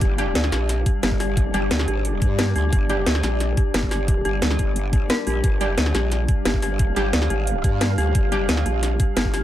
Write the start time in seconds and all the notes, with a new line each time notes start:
Already playing: G3 D4
0.01 G1 G4 D5, kick, closed hi-hat
0.18 G3 D4 G4, closed hi-hat
0.35 D2 D5, snare, closed hi-hat
0.44 snare
0.52 A#1 G4, snare, closed hi-hat
0.69 snare, closed hi-hat
0.86 G4, kick, closed hi-hat
1.03 G1 G4, snare, closed hi-hat
1.12 kick
1.20 G4, snare, open hi-hat
1.37 G4, kick, closed hi-hat
1.54 G1 G3 D4 G4, closed hi-hat
1.71 D2 D5, snare, closed hi-hat
1.79 snare
1.88 G#1 G4, closed hi-hat
2.05 closed hi-hat
2.22 G2 G4, kick, closed hi-hat
2.39 G4, snare, closed hi-hat
2.56 D2 G4, open hi-hat
2.73 G1 G4, kick, closed hi-hat
2.89 G3 D4 G4, closed hi-hat
3.06 D2 D5, snare, closed hi-hat
3.15 snare
3.23 A#1 G4, snare, closed hi-hat
3.40 snare, closed hi-hat
3.57 G4, kick, closed hi-hat
3.74 G1 G4, snare, closed hi-hat
3.83 kick
3.91 G4, snare, open hi-hat
4.08 G4, kick, closed hi-hat
4.25 G1 G4, closed hi-hat
4.42 D2 D5, snare, closed hi-hat
4.51 snare
4.59 G1 G4, kick, closed hi-hat
4.76 closed hi-hat
4.93 G4, kick, closed hi-hat
5.10 A#4, snare, closed hi-hat
5.27 A#1 G4, open hi-hat
5.44 G1 G4 F5, kick, closed hi-hat
5.61 G3 D4 G4, closed hi-hat
5.78 D2 D5, snare, closed hi-hat
5.86 snare
5.95 A#1 G4, snare, closed hi-hat
6.12 snare, closed hi-hat
6.29 G4, kick, closed hi-hat
6.45 G1 G4, snare, closed hi-hat
6.54 kick
6.62 G4, snare, open hi-hat
6.79 G4, kick, closed hi-hat
6.96 G1 G3 D4 G4, closed hi-hat
7.13 D2 D5, snare, closed hi-hat
7.22 snare
7.30 G#1 G4, closed hi-hat
7.47 closed hi-hat
7.64 G2 G4, kick, closed hi-hat
7.81 G4, snare, closed hi-hat
7.98 D2 G4, open hi-hat
8.15 G1 G4, kick, closed hi-hat
8.32 G3 D4 G4, closed hi-hat
8.49 D2 D5, snare, closed hi-hat
8.57 snare
8.66 A#1 G4, closed hi-hat
8.83 snare, closed hi-hat
9.00 G4, kick, closed hi-hat
9.17 G1 G4, snare, closed hi-hat
9.25 kick
9.34 G4, snare, open hi-hat